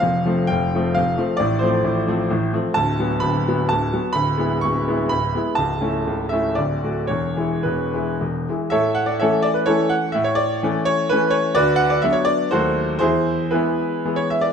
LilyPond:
<<
  \new Staff \with { instrumentName = "Grand piano" } { \time 3/4 \key f \major \tempo 4 = 125 f''4 g''4 f''4 | d''8 c''2 r8 | \key a \major a''4 b''4 a''4 | b''4 cis'''4 b''4 |
a''4. e''8 d''4 | cis''4 b'4 r4 | <a' cis'' e''>8 fis''16 d''16 <a' cis'' e''>8 d''16 b'16 <e' a' cis''>8 fis''8 | e''16 cis''16 d''4 cis''8 b'8 cis''8 |
<fis' b' d''>8 fis''16 d''16 e''16 cis''16 d''8 <fis' a' bis'>4 | <e' gis' c''>4 <e' gis' b'>4~ <e' gis' b'>16 cis''16 e''16 d''16 | }
  \new Staff \with { instrumentName = "Grand piano" } { \clef bass \time 3/4 \key f \major <f,, f,>8 <f a c'>8 <f,, f,>8 <f a c'>8 <f,, f,>8 <f a c'>8 | <a,, a,>8 <f a c'>8 <a,, a,>8 <f a c'>8 <a,, a,>8 <f a c'>8 | \key a \major <d,, d,>8 <fis b>8 <d,, d,>8 <fis b>8 <d,, d,>8 <fis b>8 | <d,, d,>8 <gis b e'>8 <d,, d,>8 <gis b e'>8 <d,, d,>8 <gis b e'>8 |
<cis,, cis,>8 <a cis' e'>8 <cis,, cis,>8 <a cis' e'>8 <d,, d,>8 <a fis'>8 | <e,, e,>8 <e gis e'>8 <e,, e,>8 <e gis e'>8 <e,, e,>8 <e gis e'>8 | a,4 <e a cis'>4 <e a cis'>4 | a,4 <e a cis'>4 <e a cis'>4 |
d,4 <fis b d'>4 <dis, fis a>4 | e,4 <e gis b>4 <e gis b>4 | }
>>